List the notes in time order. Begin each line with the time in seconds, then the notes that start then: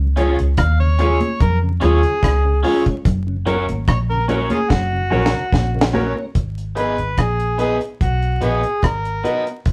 Already playing: C#2
0.16 F3 G#3 C#4 F4 G#4 C#5, closed hi-hat
0.39 C#2, closed hi-hat
0.57 D#2 F5, kick, cross-stick, closed hi-hat, high conga
0.80 C#3 C#5
0.99 F3 G#3 C#4 F4 G#4 C#5, closed hi-hat
1.20 closed hi-hat, high conga
1.40 F2 A#4, kick, closed hi-hat, low conga
1.62 C#3
1.80 D#2 F3 G#3 C#4 F4 G#4 C#5, cross-stick, closed hi-hat, low conga
2.03 C#3, closed hi-hat
2.23 C#2, kick, cross-stick, closed hi-hat
2.44 C#3 G#4 C#5
2.63 F3 G#3 C#4 F4 G#4 C#5, open hi-hat
2.86 G#3 C#4, kick, closed hi-hat
3.05 F#1, kick, closed hi-hat, low conga
3.27 F#2 C#3
3.46 F#3 A#3 C#4 F#4 A#4 C#5, closed hi-hat, low conga
3.69 G#1, closed hi-hat, high conga
3.87 A#1 C#5, kick, cross-stick, closed hi-hat, high conga
4.10 F#2 C#3 A#4
4.28 F#3 A#3 C#4 F#4 A#4 C#5, closed hi-hat, high conga
4.50 C#4 F4 G#4, closed hi-hat, high conga
4.69 F#1 F#4, kick, snare, low conga
4.93 F#2 C#3
5.11 A#1 F#3 A#3 C#4 F#4 A#4 C#5, low conga
5.26 snare
5.33 F#2 C#3
5.52 A#1, kick, snare, high conga
5.75 F#2 C#3 A#4 C#5
5.81 snare
5.93 F#3 A#3 C#4 F#4 A#4 C#5, high conga
6.16 A#3 C#4
6.35 G#1, kick, closed hi-hat
6.58 closed hi-hat
6.75 B3 D#4 G#4 B4, closed hi-hat
6.98 G#1, closed hi-hat
7.18 A#1 G#4, kick, cross-stick, closed hi-hat
7.40 closed hi-hat
7.58 B3 D#4 G#4 B4, closed hi-hat
7.81 closed hi-hat
8.01 B1 F#4, kick, closed hi-hat
8.22 closed hi-hat
8.41 A#1 B3 D#4 F#4 G#4 B4, closed hi-hat
8.63 closed hi-hat
8.83 G#1 A#4, kick, cross-stick, closed hi-hat
9.05 closed hi-hat
9.23 B3 D#4 F#4 B4, closed hi-hat
9.46 muted clean electric guitar stroke, closed hi-hat
9.65 F#1, kick, closed hi-hat